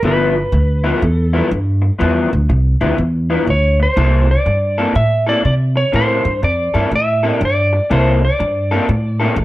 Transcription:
0.03 0.41 G1 medium
0.03 0.35 G2 medium
0.03 0.35 F3 medium
0.03 0.35 B3 medium
0.03 0.35 E4 medium
0.03 1.00 B4 medium
0.36 muted clean electric guitar stroke soft
0.52 0.90 D2 medium
0.52 muted clean electric guitar stroke soft
0.84 1.01 G2 medium
0.84 1.01 F3 medium
0.84 1.02 B3 medium
0.84 1.01 E4 medium
1.00 1.40 E2 medium
1.00 1.48 A4 medium
1.00 muted clean electric guitar stroke soft
1.33 1.49 G2 medium
1.33 1.50 F3 medium
1.33 1.50 B3 medium
1.33 1.50 E4 medium
1.50 1.89 G2 medium
1.50 muted clean electric guitar stroke soft
1.82 muted clean electric guitar stroke soft
1.99 2.25 E2 medium
1.99 2.31 G2 medium
1.99 2.31 F3 medium
1.99 2.31 B3 medium
1.99 2.30 E4 medium
2.31 2.46 D2 medium
2.31 muted clean electric guitar stroke soft
2.49 2.74 C2 medium
2.49 muted clean electric guitar stroke soft
2.81 2.94 D2 medium
2.81 2.97 G2 medium
2.81 2.98 F3 medium
2.81 2.97 B3 medium
2.81 2.98 E4 medium
2.98 3.36 E2 medium
2.98 muted clean electric guitar stroke soft
3.30 3.46 G2 medium
3.30 3.47 F3 medium
3.30 3.46 B3 medium
3.30 3.47 E4 medium
3.47 3.85 D2 medium
3.47 3.81 C#5 medium
3.47 muted clean electric guitar stroke soft
3.80 4.31 C5 medium
3.80 muted clean electric guitar stroke soft
3.96 4.34 C2 medium
3.96 4.28 C3 medium
3.96 4.28 A#3 medium
3.96 4.28 E4 medium
3.96 4.27 A4 medium
4.28 4.96 D5 medium
4.28 muted clean electric guitar stroke soft
4.46 4.84 G2 medium
4.46 muted clean electric guitar stroke soft
4.78 4.94 C3 medium
4.78 4.94 A#3 medium
4.78 4.94 E4 medium
4.78 4.95 A4 medium
4.95 5.33 A2 medium
4.95 5.25 E5 medium
4.95 muted clean electric guitar stroke soft
5.26 5.42 C3 medium
5.26 5.42 A#3 medium
5.26 5.42 E4 medium
5.26 5.42 A4 medium
5.26 5.44 D5 medium
5.43 5.82 C3 medium
5.43 5.54 D5 medium
5.43 muted clean electric guitar stroke soft
5.76 5.94 C#5 medium
5.76 muted clean electric guitar stroke soft
5.92 6.18 A2 medium
5.92 6.24 C3 medium
5.92 6.24 A#3 medium
5.92 6.24 E4 medium
5.92 6.23 A4 medium
5.92 6.40 C5 medium
6.24 6.38 G2 medium
6.24 muted clean electric guitar stroke soft
6.42 6.67 F2 medium
6.42 6.89 D5 medium
6.42 muted clean electric guitar stroke soft
6.74 6.88 G2 medium
6.74 6.90 C3 medium
6.74 6.91 A#3 medium
6.74 6.91 E4 medium
6.74 6.91 A4 medium
6.91 7.29 A2 medium
6.91 muted clean electric guitar stroke soft
6.95 7.44 E5 medium
7.23 7.40 C3 medium
7.23 7.40 A#3 medium
7.23 7.41 E4 medium
7.23 7.40 A4 medium
7.41 7.78 G2 medium
7.41 muted clean electric guitar stroke soft
7.45 7.93 D5 medium
7.73 muted clean electric guitar stroke soft
7.90 8.28 C2 medium
7.90 8.21 C3 medium
7.90 8.21 A#3 medium
7.90 8.21 E4 medium
7.90 8.21 A4 medium
7.90 8.23 C5 medium
8.22 9.45 D5 medium
8.22 muted clean electric guitar stroke soft
8.39 8.77 G2 medium
8.39 muted clean electric guitar stroke soft
8.71 8.87 C3 medium
8.71 8.88 A#3 medium
8.71 8.88 E4 medium
8.71 8.88 A4 medium
8.88 9.26 A2 medium
8.88 muted clean electric guitar stroke soft
9.20 9.36 C3 medium
9.20 9.36 A#3 medium
9.20 9.37 E4 medium
9.20 9.37 A4 medium
9.36 9.45 A1 medium
9.36 muted clean electric guitar stroke soft

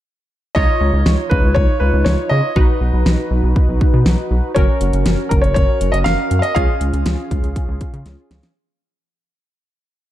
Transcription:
0.55 0.66 C#2 loud
0.55 2.52 D#4 medium
0.55 2.52 F4 medium
0.55 2.52 C#5 medium
0.55 1.33 D#5 loud
0.55 kick loud
0.81 0.91 C#2 loud
0.93 1.03 C#2 loud
1.06 1.16 C#2 loud
1.06 snare loud
1.30 1.41 C#2 loud
1.30 1.56 B4 medium
1.30 kick medium
1.43 1.53 C#2 medium
1.55 1.66 C#2 loud
1.55 1.81 C#5 loud
1.55 kick medium
1.80 1.91 C#2 loud
1.80 2.06 B4 medium
1.94 2.04 C#2 medium
2.05 2.16 C#2 loud
2.05 2.31 C#5 medium
2.05 snare loud
2.29 2.41 C#3 loud
2.29 3.26 D#5 loud
2.56 2.66 B1 loud
2.56 4.52 D#4 medium
2.56 4.52 F#4 medium
2.56 4.52 B4 medium
2.56 kick loud
2.81 2.91 B1 loud
2.94 3.04 B1 loud
3.06 3.16 B1 loud
3.06 snare loud
3.31 3.41 B1 loud
3.43 3.53 B1 loud
3.56 kick medium
3.69 3.79 B1 loud
3.81 kick medium
3.94 4.04 B2 medium
4.06 4.16 B1 loud
4.06 snare loud
4.31 4.41 B1 medium
4.55 4.66 F#1 loud
4.55 6.52 C#4 medium
4.55 6.52 F#4 medium
4.55 6.52 A#4 medium
4.55 5.26 C#5 medium
4.55 kick loud
4.55 closed hi-hat medium
4.81 4.91 F#1 medium
4.81 closed hi-hat medium
4.93 5.04 F#1 loud
4.93 closed hi-hat soft
5.06 5.16 F#1 loud
5.06 snare loud
5.06 closed hi-hat medium
5.29 5.41 F#1 loud
5.29 5.34 A#4 medium
5.29 kick loud
5.29 closed hi-hat medium
5.42 5.54 F#1 loud
5.42 5.53 C#5 medium
5.42 closed hi-hat soft
5.54 5.66 F#1 loud
5.54 5.94 C#5 loud
5.54 kick medium
5.54 closed hi-hat medium
5.81 5.91 F#1 loud
5.81 closed hi-hat medium
5.92 6.04 F#1 loud
5.92 5.97 D#5 medium
5.92 closed hi-hat medium
6.04 6.16 F#1 loud
6.04 6.38 F5 loud
6.04 snare loud
6.04 closed hi-hat medium
6.31 6.41 F#2 medium
6.31 closed hi-hat medium
6.39 6.56 D#5 loud
6.39 6.43 F5 medium
6.43 closed hi-hat medium
6.55 6.66 C#2 loud
6.55 8.52 C#4 medium
6.55 8.52 F4 medium
6.55 8.52 G#4 medium
6.55 8.01 F5 loud
6.55 kick loud
6.55 closed hi-hat medium
6.81 6.91 C#2 loud
6.81 closed hi-hat medium
6.94 7.04 C#2 loud
6.94 closed hi-hat soft
7.06 7.16 C#2 medium
7.06 snare loud
7.06 closed hi-hat medium
7.31 7.41 C#2 loud
7.31 kick loud
7.31 closed hi-hat medium
7.43 7.53 C#2 loud
7.43 closed hi-hat soft
7.56 kick loud
7.56 closed hi-hat medium
7.68 7.78 C#2 loud
7.81 kick medium
7.81 closed hi-hat medium
7.93 8.03 C#3 medium
7.93 closed hi-hat soft
8.06 8.16 C#2 loud
8.06 snare medium
8.06 closed hi-hat medium
8.31 8.41 C#2 loud
8.31 snare medium
8.31 closed hi-hat medium
8.43 snare medium
8.43 closed hi-hat medium

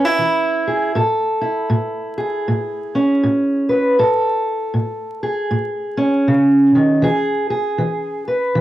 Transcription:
0.00 0.14 E3 medium
0.00 0.66 B4 medium
0.05 0.96 E4 soft
0.19 0.89 E3 medium
0.67 0.93 G#4 soft
0.95 1.65 A2 medium
0.95 2.17 A4 medium
1.41 4.91 E4 medium
1.69 2.41 A2 medium
2.18 3.69 G#4 medium
2.48 3.18 A2 medium
2.95 3.97 C#4 medium
3.23 3.94 A2 medium
3.69 3.96 B4 medium
3.99 4.69 A2 medium
3.99 5.22 A4 medium
4.74 5.45 A2 medium
5.23 7.01 G#4 medium
5.51 6.21 A2 medium
5.97 7.00 C#4 medium
6.28 6.74 C#3 medium
6.75 7.04 D#3 medium
7.02 7.73 E3 medium
7.02 7.49 G#4 medium
7.50 8.26 G#4 medium
7.78 8.49 E3 medium
8.28 8.61 B4 medium
8.55 8.61 E3 medium

